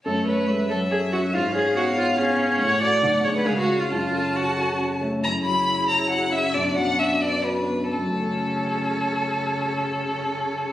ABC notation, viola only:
X:1
M:3/4
L:1/16
Q:1/4=136
K:F#m
V:1 name="Viola"
A2 B4 A2 G2 F2 | ^E2 G2 F2 E2 C4 | c2 d4 c B G F2 ^E | ^E4 F4 z4 |
E12 | D8- D2 z2 | C12- | C12 |]